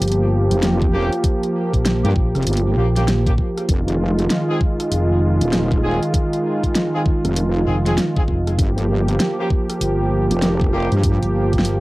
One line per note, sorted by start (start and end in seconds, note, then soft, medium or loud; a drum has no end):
0.00 0.48 G1 loud
0.00 3.65 F3 medium
0.00 3.65 A#3 medium
0.00 3.65 G4 loud
0.00 closed hi-hat medium
0.08 closed hi-hat soft
0.12 closed hi-hat soft
0.51 1.09 F1 loud
0.51 closed hi-hat medium
0.63 snare loud
0.63 closed hi-hat medium
0.82 kick loud
0.93 1.10 A#3 medium
0.93 1.10 C#4 medium
0.93 1.10 F4 medium
0.93 1.10 G4 loud
0.93 cross-stick soft
1.12 closed hi-hat soft
1.24 kick loud
1.24 closed hi-hat medium
1.43 closed hi-hat soft
1.73 2.01 A#1 medium
1.73 kick medium
1.73 closed hi-hat soft
1.85 snare loud
1.85 closed hi-hat medium
2.04 2.14 G2 loud
2.04 2.10 A#3 medium
2.04 2.10 C#4 medium
2.04 2.10 F4 medium
2.04 2.10 G4 medium
2.04 closed hi-hat soft
2.16 2.32 A#1 loud
2.16 kick loud
2.35 2.44 F1 loud
2.35 cross-stick soft
2.35 closed hi-hat soft
2.43 2.75 G1 loud
2.43 closed hi-hat soft
2.47 closed hi-hat medium
2.53 closed hi-hat soft
2.57 closed hi-hat soft
2.77 3.36 A#1 loud
2.77 2.87 A#3 medium
2.77 2.87 C#4 medium
2.77 2.87 F4 medium
2.77 2.87 G4 medium
2.96 3.06 A#3 medium
2.96 3.06 C#4 medium
2.96 3.06 F4 medium
2.96 3.06 G4 medium
2.96 snare soft
2.96 closed hi-hat medium
3.08 snare loud
3.08 closed hi-hat medium
3.26 3.33 A#3 medium
3.26 3.33 C#4 medium
3.26 3.33 F4 medium
3.26 3.33 G4 medium
3.26 kick loud
3.26 closed hi-hat soft
3.38 kick medium
3.58 cross-stick soft
3.58 closed hi-hat soft
3.69 4.28 F1 medium
3.69 8.55 D#3 medium
3.69 8.55 G#3 medium
3.69 8.55 F4 medium
3.69 kick loud
3.69 closed hi-hat medium
3.88 closed hi-hat soft
4.19 closed hi-hat soft
4.30 snare loud
4.30 closed hi-hat medium
4.49 4.59 C4 medium
4.49 4.59 D#4 medium
4.49 4.59 F4 medium
4.49 4.59 G#4 medium
4.61 kick loud
4.80 cross-stick medium
4.80 closed hi-hat soft
4.91 5.38 F1 medium
4.91 closed hi-hat medium
5.41 5.99 D#1 loud
5.41 closed hi-hat medium
5.53 snare loud
5.53 closed hi-hat medium
5.72 kick loud
5.78 cross-stick soft
5.83 6.00 C4 medium
5.83 6.00 D#4 medium
5.83 6.00 F4 medium
5.83 6.00 G#4 loud
6.03 closed hi-hat soft
6.14 kick loud
6.14 closed hi-hat medium
6.33 closed hi-hat soft
6.64 kick medium
6.64 closed hi-hat soft
6.75 snare loud
6.75 closed hi-hat medium
6.94 7.00 C4 medium
6.94 7.00 D#4 medium
6.94 7.00 F4 medium
6.94 7.00 G#4 medium
7.06 kick loud
7.25 7.65 F1 loud
7.25 cross-stick medium
7.25 closed hi-hat soft
7.36 closed hi-hat medium
7.67 7.96 F1 loud
7.67 7.77 C4 medium
7.67 7.77 D#4 medium
7.67 7.77 F4 medium
7.67 7.77 G#4 medium
7.86 7.96 C4 medium
7.86 7.96 D#4 medium
7.86 7.96 F4 medium
7.86 7.96 G#4 medium
7.86 snare soft
7.86 closed hi-hat medium
7.98 snare loud
7.98 closed hi-hat medium
8.16 8.23 C4 medium
8.16 8.23 D#4 medium
8.16 8.23 F4 medium
8.16 8.23 G#4 medium
8.16 kick loud
8.28 8.57 F1 loud
8.28 kick medium
8.47 cross-stick medium
8.47 closed hi-hat soft
8.59 9.18 G1 loud
8.59 11.80 F3 medium
8.59 11.80 A#3 medium
8.59 11.80 G4 loud
8.59 kick loud
8.59 closed hi-hat medium
8.78 closed hi-hat soft
9.08 closed hi-hat soft
9.20 snare loud
9.20 closed hi-hat medium
9.39 9.49 A#3 medium
9.39 9.49 C#4 medium
9.39 9.49 F4 medium
9.39 9.49 G4 medium
9.50 kick loud
9.70 cross-stick medium
9.70 closed hi-hat soft
9.80 10.27 G1 loud
9.80 closed hi-hat medium
10.31 10.89 F1 loud
10.31 closed hi-hat medium
10.42 snare loud
10.42 closed hi-hat medium
10.61 kick loud
10.73 10.89 A#3 medium
10.73 10.89 C#4 medium
10.73 10.89 F4 medium
10.73 10.89 G4 loud
10.73 cross-stick soft
10.92 11.20 G2 loud
10.92 closed hi-hat soft
11.03 kick loud
11.03 closed hi-hat medium
11.22 11.80 G1 loud
11.22 closed hi-hat soft
11.53 kick medium
11.53 closed hi-hat soft
11.59 snare loud
11.65 closed hi-hat medium